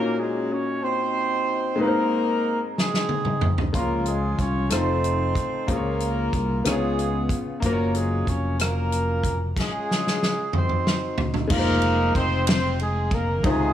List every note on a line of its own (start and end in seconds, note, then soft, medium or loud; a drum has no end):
0.00 0.78 A#2 medium
0.00 0.16 A#3 medium
0.00 1.74 A#3 medium
0.00 0.52 C#4 medium
0.00 1.80 C#4 medium
0.00 1.75 D#4 medium
0.00 0.79 F#4 medium
0.00 1.76 F#4 soft
0.00 0.16 A#4 medium
0.19 0.51 G#3 medium
0.19 0.51 G#4 medium
0.52 0.83 C#4 medium
0.52 0.83 C#5 medium
0.84 1.80 C4 medium
0.84 1.76 D#4 medium
0.84 1.76 F#4 medium
0.84 1.80 C5 medium
1.76 2.72 G#2 medium
1.76 3.68 G#3 medium
1.76 3.69 C4 soft
1.80 2.60 A#3 medium
1.80 3.70 D#4 soft
1.80 2.60 D#4 medium
1.80 2.60 A#4 medium
1.80 1.87 B4 soft
1.88 3.74 C5 medium
2.77 3.50 G#3 medium
2.77 3.70 C4 soft
2.77 3.70 D#4 soft
2.77 3.50 G#4 medium
2.77 snare soft
2.94 snare soft
3.09 high tom medium
3.25 mid tom medium
3.41 mid tom medium
3.58 floor tom medium
3.73 4.35 C#2 medium
3.73 4.67 F3 soft
3.73 4.70 G#3 medium
3.73 4.04 A#3 medium
3.73 4.71 C#4 soft
3.73 4.70 F4 soft
3.73 4.67 F4 medium
3.73 4.04 A#4 medium
3.73 4.72 C6 medium
3.73 kick medium
3.73 closed hi-hat medium
4.06 4.39 G#3 medium
4.06 4.39 G#4 medium
4.06 closed hi-hat soft
4.39 4.68 C2 medium
4.39 4.71 C#4 medium
4.39 4.71 C#5 medium
4.39 kick medium
4.39 closed hi-hat soft
4.70 5.32 F1 medium
4.70 5.67 A3 soft
4.70 5.68 C4 medium
4.70 5.68 D#4 soft
4.70 5.64 D#4 medium
4.70 5.66 F4 soft
4.70 5.64 A4 medium
4.70 5.68 C5 medium
4.70 cross-stick medium
4.70 closed hi-hat medium
5.04 closed hi-hat soft
5.35 kick medium
5.35 closed hi-hat soft
5.67 6.29 C#2 medium
5.67 6.65 A#3 medium
5.67 6.62 A#3 medium
5.67 6.61 C#4 medium
5.67 6.65 F4 soft
5.67 6.62 F4 medium
5.67 6.65 G#4 soft
5.67 6.62 A#4 medium
5.67 5.75 C5 medium
5.67 kick medium
5.67 closed hi-hat medium
5.76 6.65 C#5 medium
6.00 closed hi-hat soft
6.33 6.63 C2 medium
6.33 kick medium
6.33 closed hi-hat soft
6.64 7.26 C#2 medium
6.64 7.58 C#3 medium
6.64 7.35 G#3 medium
6.64 7.62 B3 medium
6.64 7.59 B3 medium
6.64 6.72 D#4 soft
6.64 7.59 F4 medium
6.64 7.63 G#4 soft
6.64 7.35 G#4 medium
6.64 7.63 C#5 medium
6.64 cross-stick medium
6.64 closed hi-hat medium
6.72 7.61 F4 soft
6.99 closed hi-hat soft
7.29 kick medium
7.29 closed hi-hat soft
7.60 8.23 F#1 medium
7.60 9.53 F#3 medium
7.60 9.51 A#3 medium
7.60 9.52 F4 medium
7.60 8.56 F4 medium
7.60 kick medium
7.60 closed hi-hat medium
7.64 7.93 A#3 medium
7.64 8.28 C#4 medium
7.64 7.93 A#4 medium
7.64 7.70 C5 soft
7.72 9.57 C#5 medium
7.95 8.28 G#3 medium
7.95 8.28 G#4 medium
7.95 closed hi-hat soft
8.27 9.52 F1 medium
8.27 8.60 C#4 medium
8.27 8.60 C#5 medium
8.27 kick medium
8.27 closed hi-hat soft
8.59 9.40 A#3 medium
8.59 9.40 C#4 soft
8.59 9.40 F4 medium
8.59 9.40 A#4 medium
8.59 cross-stick medium
8.59 closed hi-hat medium
8.92 closed hi-hat soft
9.24 kick medium
9.24 closed hi-hat soft
9.57 10.51 G#3 medium
9.57 10.50 C#4 medium
9.57 10.50 F4 soft
9.57 10.51 G#4 medium
9.57 kick medium
9.57 snare soft
9.57 crash medium
9.91 snare medium
10.07 snare soft
10.23 snare medium
10.53 11.27 C4 medium
10.53 11.47 D#4 medium
10.53 11.47 F#4 soft
10.53 11.27 C5 medium
10.53 mid tom medium
10.69 mid tom medium
10.87 snare medium
11.18 floor tom medium
11.34 floor tom medium
11.47 12.11 F1 loud
11.47 13.39 G#3 medium
11.47 12.11 A#3 medium
11.47 13.40 D#4 medium
11.47 13.41 F4 medium
11.47 12.11 A#4 loud
11.47 kick loud
11.47 crash medium
11.52 12.44 D#4 medium
11.52 11.58 A#4 medium
11.59 13.44 C5 medium
11.82 ride soft
12.15 13.44 F1 medium
12.15 12.46 C4 medium
12.15 12.46 C5 loud
12.15 kick medium
12.15 ride soft
12.47 12.77 C4 medium
12.47 12.77 C5 medium
12.47 snare loud
12.47 ride medium
12.79 13.13 G#3 medium
12.79 13.13 G#4 medium
12.79 ride soft
13.11 13.45 A#3 medium
13.11 13.45 A#4 medium
13.11 kick medium
13.11 ride soft
13.43 13.73 C#2 loud
13.43 13.73 C3 medium
13.43 13.73 D#3 medium
13.43 13.73 G#3 medium
13.43 13.73 C4 medium
13.43 13.73 D#4 medium
13.43 13.73 F4 medium
13.43 13.73 G#4 medium
13.43 13.73 C5 medium
13.43 kick loud
13.43 ride medium